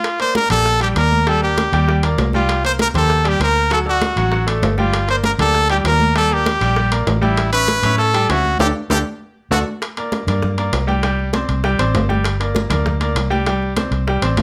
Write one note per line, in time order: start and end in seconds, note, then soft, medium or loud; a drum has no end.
0.00 0.18 F4 medium
0.04 high bongo medium
0.04 high conga soft
0.04 high timbale medium
0.19 0.45 A#3 medium
0.19 0.45 A#4 medium
0.19 0.35 C5 loud
0.19 0.45 D5 medium
0.19 high conga soft
0.19 high timbale medium
0.35 0.50 A#4 loud
0.35 high bongo medium
0.35 high conga loud
0.35 high timbale medium
0.50 0.93 A#1 loud
0.50 0.75 A#3 medium
0.50 0.75 G4 medium
0.50 0.79 A4 loud
0.50 0.75 D5 medium
0.50 high bongo soft
0.50 high conga soft
0.50 low conga medium
0.50 high timbale medium
0.66 high bongo medium
0.66 high conga soft
0.80 0.93 G3 medium
0.80 0.93 G4 medium
0.80 0.89 G4 medium
0.80 0.93 G5 medium
0.80 high bongo soft
0.80 high conga soft
0.80 high timbale medium
0.95 1.67 D#2 medium
0.95 1.21 A#3 medium
0.95 1.21 A#4 medium
0.95 1.30 A#4 loud
0.95 1.21 D5 medium
0.95 high bongo soft
0.95 low bongo medium
0.95 high conga soft
0.95 high timbale loud
1.11 high bongo soft
1.11 high conga medium
1.27 1.39 G3 medium
1.27 1.39 G4 medium
1.27 1.43 A4 medium
1.27 1.40 G5 medium
1.27 high bongo medium
1.27 high conga soft
1.27 high timbale medium
1.42 1.67 A#3 medium
1.42 2.00 G4 medium
1.42 1.67 A#4 medium
1.42 1.67 D5 medium
1.42 high conga soft
1.58 high bongo medium
1.58 high conga loud
1.58 high timbale medium
1.72 2.15 D#2 loud
1.72 1.85 G3 medium
1.72 1.86 G4 medium
1.72 1.86 G5 medium
1.72 high bongo soft
1.72 high timbale medium
1.88 2.00 G3 medium
1.88 2.01 G4 medium
1.88 2.01 G5 medium
1.88 high bongo medium
1.88 high conga soft
2.03 2.28 A#3 medium
2.03 2.28 A#4 medium
2.03 2.29 D5 medium
2.03 high bongo soft
2.03 high conga soft
2.03 high timbale medium
2.18 2.89 C2 medium
2.18 high bongo soft
2.18 low bongo medium
2.18 high conga medium
2.18 high timbale medium
2.18 low timbale medium
2.33 2.59 G3 medium
2.33 2.63 F4 medium
2.33 2.59 G4 medium
2.33 2.59 G5 medium
2.33 high bongo soft
2.33 high conga medium
2.49 high bongo medium
2.49 high conga soft
2.49 high timbale medium
2.64 2.89 A#3 medium
2.64 2.89 A#4 medium
2.64 2.89 C5 medium
2.64 2.72 C5 loud
2.64 high conga soft
2.64 high timbale medium
2.79 2.88 A#4 loud
2.79 high bongo medium
2.79 high conga loud
2.79 high timbale medium
2.94 3.37 D#2 loud
2.94 3.20 A#3 medium
2.94 3.20 G4 medium
2.94 3.30 A4 loud
2.94 3.20 C5 medium
2.94 high bongo soft
2.94 high conga soft
2.94 low conga medium
2.94 high timbale medium
3.10 high bongo medium
3.10 high conga soft
3.24 3.37 G3 medium
3.24 3.38 G4 medium
3.24 3.42 G4 medium
3.24 3.38 G5 medium
3.24 high bongo soft
3.24 high conga soft
3.24 high timbale medium
3.40 4.11 D2 medium
3.40 3.65 A#3 medium
3.40 3.66 A#4 medium
3.40 3.70 A#4 loud
3.40 3.66 C5 medium
3.40 high bongo soft
3.40 low bongo medium
3.40 high conga soft
3.40 high timbale loud
3.56 high bongo soft
3.70 3.83 F#3 medium
3.70 3.83 F#4 medium
3.70 3.79 A4 medium
3.70 3.84 F#5 medium
3.70 high bongo medium
3.70 high conga soft
3.70 high timbale medium
3.86 4.11 A3 medium
3.86 4.45 F#4 medium
3.86 4.11 A4 medium
3.86 4.11 D5 medium
3.86 high conga soft
4.01 high bongo medium
4.01 high conga loud
4.01 high timbale medium
4.16 4.59 A1 medium
4.16 4.30 F#3 medium
4.16 4.30 F#4 medium
4.16 4.30 F#5 medium
4.16 high bongo soft
4.16 high conga soft
4.16 high timbale medium
4.32 4.44 F#3 medium
4.32 4.45 F#4 medium
4.32 4.45 F#5 medium
4.32 high bongo medium
4.32 high conga soft
4.47 4.72 A3 medium
4.47 4.72 A4 medium
4.47 4.72 D5 medium
4.47 high bongo soft
4.47 high conga soft
4.47 high timbale loud
4.62 5.33 G1 medium
4.62 high bongo soft
4.62 low bongo medium
4.62 high conga medium
4.62 high timbale medium
4.62 low timbale medium
4.78 5.03 G3 medium
4.78 5.07 F4 medium
4.78 5.03 G4 medium
4.78 5.03 G5 medium
4.78 high bongo soft
4.78 high conga medium
4.93 high bongo medium
4.93 high conga soft
4.93 high timbale loud
5.08 5.33 A#3 medium
5.08 5.33 A#4 medium
5.08 5.17 C5 loud
5.08 5.34 D5 medium
5.08 high conga soft
5.08 high timbale medium
5.24 5.31 A#4 medium
5.24 high bongo medium
5.24 high conga loud
5.24 high timbale medium
5.39 5.81 D2 loud
5.39 5.65 A#3 medium
5.39 5.64 G4 medium
5.39 5.68 A4 loud
5.39 5.65 D5 medium
5.39 high bongo soft
5.39 high conga soft
5.39 low conga medium
5.39 high timbale medium
5.54 high bongo medium
5.54 high conga soft
5.70 5.82 G3 medium
5.70 5.82 G4 medium
5.70 5.77 G4 medium
5.70 5.83 G5 medium
5.70 high bongo soft
5.70 high conga soft
5.70 high timbale medium
5.84 6.55 D#2 medium
5.84 6.10 A#3 medium
5.84 6.10 A#4 medium
5.84 6.14 A#4 loud
5.84 6.10 D5 medium
5.84 high bongo soft
5.84 low bongo medium
5.84 high timbale loud
5.84 low timbale medium
6.00 high bongo soft
6.00 high conga medium
6.15 6.28 G3 medium
6.15 6.28 G4 medium
6.15 6.35 A4 loud
6.15 6.28 G5 medium
6.15 high bongo medium
6.15 high conga soft
6.15 high timbale medium
6.31 6.56 A#3 medium
6.31 6.93 G4 medium
6.31 6.56 A#4 medium
6.31 6.56 D5 medium
6.31 high conga soft
6.46 high bongo medium
6.46 high conga loud
6.46 high timbale medium
6.61 7.04 A#1 loud
6.61 6.74 G3 medium
6.61 6.74 G4 medium
6.61 6.74 G5 loud
6.61 high bongo soft
6.61 high conga soft
6.61 high timbale medium
6.76 6.89 G3 medium
6.76 6.89 G4 medium
6.76 6.90 G5 medium
6.76 high bongo medium
6.76 high conga soft
6.92 7.17 A#3 medium
6.92 7.17 A#4 medium
6.92 7.17 D5 medium
6.92 high bongo soft
6.92 high conga soft
6.92 high timbale loud
7.07 7.78 A1 medium
7.07 high bongo soft
7.07 low bongo medium
7.07 high conga medium
7.07 high timbale medium
7.07 low timbale medium
7.22 7.47 G3 loud
7.22 7.51 E4 medium
7.22 7.47 G4 medium
7.22 7.47 G5 medium
7.22 high bongo soft
7.22 high conga medium
7.37 high bongo medium
7.37 high conga soft
7.37 high timbale medium
7.53 7.78 C#4 medium
7.53 7.95 B4 loud
7.53 7.78 C#5 medium
7.53 7.79 E5 medium
7.53 high conga soft
7.53 high timbale medium
7.68 high bongo medium
7.68 high conga loud
7.68 high timbale medium
7.83 8.26 A2 loud
7.83 8.08 C#4 medium
7.83 8.09 C#5 medium
7.83 8.09 E5 medium
7.83 high bongo soft
7.83 high conga soft
7.83 low conga medium
7.83 high timbale medium
7.98 8.32 A4 loud
7.98 high bongo medium
7.98 high conga soft
8.14 8.27 G3 medium
8.14 8.26 G4 medium
8.14 8.27 G5 medium
8.14 high bongo soft
8.14 high conga soft
8.14 high timbale medium
8.29 8.57 D2 medium
8.29 8.55 C#4 medium
8.29 8.60 F#4 medium
8.29 8.55 C#5 medium
8.29 8.55 E5 medium
8.29 high bongo soft
8.29 low bongo medium
8.29 high conga soft
8.29 high timbale loud
8.29 low timbale medium
8.45 high bongo soft
8.45 high conga medium
8.59 8.71 D2 loud
8.59 8.70 D4 loud
8.59 8.70 G4 medium
8.59 8.68 G4 loud
8.59 8.70 A4 loud
8.59 low bongo loud
8.59 high conga medium
8.59 high timbale loud
8.90 9.01 D2 medium
8.90 9.00 D4 loud
8.90 9.00 G4 medium
8.90 8.98 G4 medium
8.90 9.00 A4 medium
8.90 low bongo loud
8.90 high conga loud
8.90 high timbale loud
9.51 9.62 D2 medium
9.51 9.61 D4 loud
9.51 9.61 F#4 medium
9.51 9.59 F#4 medium
9.51 9.61 A4 loud
9.51 low bongo medium
9.51 high conga loud
9.51 high timbale loud
9.82 high bongo medium
9.82 high conga soft
9.82 high timbale medium
9.97 10.22 A#3 medium
9.97 10.23 A#4 medium
9.97 10.23 D5 medium
9.97 high conga soft
9.97 high timbale medium
10.12 high bongo medium
10.12 high conga medium
10.12 high timbale medium
10.27 10.70 G2 loud
10.27 10.53 A#3 medium
10.27 10.53 A#4 medium
10.27 10.53 D5 medium
10.27 high bongo soft
10.27 high conga soft
10.27 low conga medium
10.27 high timbale medium
10.42 high bongo medium
10.42 high conga soft
10.42 low conga medium
10.58 10.83 A#3 medium
10.58 10.83 A#4 medium
10.58 10.83 D5 medium
10.58 high bongo soft
10.58 high conga soft
10.58 high timbale medium
10.73 11.43 C2 medium
10.73 high bongo soft
10.73 low bongo medium
10.73 high conga soft
10.73 high timbale loud
10.73 low timbale medium
10.87 11.00 G3 medium
10.87 11.00 G4 medium
10.87 11.01 G5 medium
10.87 high bongo soft
10.87 high conga medium
11.03 11.28 G3 medium
11.03 11.29 G4 medium
11.03 11.29 G5 medium
11.03 high bongo medium
11.03 high conga soft
11.03 high timbale medium
11.19 high conga soft
11.33 11.59 C4 medium
11.33 11.59 C5 medium
11.33 11.59 D5 medium
11.33 high bongo medium
11.33 high conga loud
11.33 high timbale medium
11.49 11.77 C2 loud
11.49 high bongo soft
11.49 high conga soft
11.49 high timbale medium
11.64 11.77 G3 medium
11.64 11.77 G4 medium
11.64 11.77 G5 medium
11.64 high bongo medium
11.64 high conga soft
11.79 11.93 A1 medium
11.79 12.04 C4 medium
11.79 12.04 C5 medium
11.79 12.04 D5 medium
11.79 high bongo soft
11.79 high conga soft
11.79 high timbale medium
11.94 12.65 G1 medium
11.94 high bongo soft
11.94 low bongo medium
11.94 high conga medium
11.94 high timbale medium
11.94 low timbale medium
12.09 12.34 G3 medium
12.09 12.34 G4 medium
12.09 12.34 G5 medium
12.09 high bongo soft
12.09 high conga medium
12.24 high bongo medium
12.24 high conga soft
12.24 high timbale medium
12.40 12.65 A#3 medium
12.40 12.65 A#4 medium
12.40 12.65 D5 medium
12.40 high conga soft
12.40 high timbale medium
12.55 high bongo medium
12.55 high conga loud
12.55 high timbale medium
12.70 13.13 D2 loud
12.70 12.95 A#3 medium
12.70 12.95 A#4 medium
12.70 12.95 D5 medium
12.70 high bongo soft
12.70 high conga soft
12.70 low conga medium
12.70 high timbale loud
12.86 high bongo medium
12.86 high conga soft
12.86 low conga medium
13.00 13.26 A#3 medium
13.00 13.26 A#4 medium
13.00 13.26 D5 medium
13.00 high bongo soft
13.00 high conga soft
13.00 high timbale medium
13.15 13.86 C2 medium
13.15 high bongo soft
13.15 low bongo medium
13.15 high conga soft
13.15 high timbale loud
13.30 13.43 G3 medium
13.30 13.43 G4 medium
13.30 13.44 G5 medium
13.30 high bongo soft
13.30 high conga medium
13.46 13.71 G3 medium
13.46 13.72 G4 medium
13.46 13.72 G5 medium
13.46 high bongo medium
13.46 high conga soft
13.46 high timbale medium
13.62 high conga soft
13.76 14.02 C4 medium
13.76 14.02 C5 medium
13.76 14.02 D5 medium
13.76 high bongo medium
13.76 high conga loud
13.76 high timbale medium
13.91 14.20 C2 loud
13.91 high bongo soft
13.91 high conga soft
13.91 high timbale medium
14.07 14.20 G3 medium
14.07 14.20 G4 medium
14.07 14.20 G5 medium
14.07 high bongo medium
14.07 high conga soft
14.22 14.36 A1 medium
14.22 14.42 C4 medium
14.22 14.42 C5 medium
14.22 14.42 D5 medium
14.22 high bongo soft
14.22 high conga soft
14.22 high timbale loud
14.37 14.42 G1 medium
14.37 high bongo soft
14.37 low bongo medium
14.37 high conga medium
14.37 high timbale medium
14.37 low timbale medium